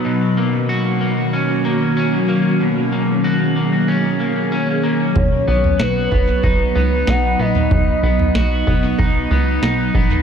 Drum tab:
SD |----------------|----------------|----o-------o---|----o-------o---|
FT |----------------|----------------|o--o--o-o------o|o--o--o-o------o|
BD |----------------|----------------|o-----o-o-------|o-----o-o-----o-|